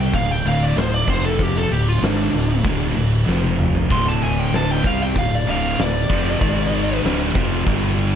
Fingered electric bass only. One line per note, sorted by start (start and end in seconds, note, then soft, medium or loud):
0.00 0.12 C2 loud
0.14 0.43 D1 medium
0.45 0.74 D1 medium
0.76 1.06 D1 medium
1.07 1.67 F1 loud
1.71 2.00 D1 medium
2.02 2.31 G#1 loud
2.33 2.63 D1 medium
2.65 2.94 D1 loud
2.96 3.26 D1 medium
3.28 3.87 F1 loud
3.91 4.81 D1 medium
4.84 5.14 C2 loud
5.16 5.45 D1 medium
5.47 5.77 D1 medium
5.79 6.08 D1 medium
6.09 6.39 F1 medium
6.41 7.00 G#1 medium
7.05 7.34 D1 loud
7.35 7.64 F1 loud
7.66 8.15 G1 loud